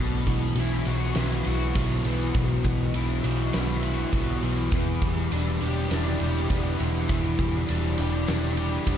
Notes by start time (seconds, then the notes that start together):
Already playing: B1 B2
0.27 B1 E3, kick, ride
0.56 B1 E3 E4, ride
0.85 B1 F#3 F#4, ride
1.15 B1 B3 E4, snare, ride
1.45 B1 E3 F#4, ride
1.75 B1 F#3 B3, kick, ride
2.05 B1 E3 B3, ride
2.34 B1 B2, kick, ride
2.65 B1 E3, kick, ride
2.94 B1 E3 E4, ride
3.24 B1 F#3 F#4, ride
3.53 B1 B3 E4, snare, ride
3.83 E3 F#4, ride
4.12 B1 F#3 B3, kick, ride
4.42 B1 E3 B3, ride
4.72 E1 E3, kick, ride
5.02 E1 G3, kick, ride
5.31 E1 G3 D4, ride
5.61 E1 D4 G4, ride
5.91 E1 D4 E4, snare, ride
6.20 E1 G3 G4, ride
6.49 E1 B3 D4, kick, ride
6.78 E1 E3 E4, ride
7.08 E1 E3, kick, ride
7.38 E1 G3, kick, ride
7.67 E1 G3 D4, ride
7.97 E1 D4 G4, ride
8.27 E1 D4 E4, snare, ride
8.57 G3 G4, ride
8.86 E1 B3 D4, kick, ride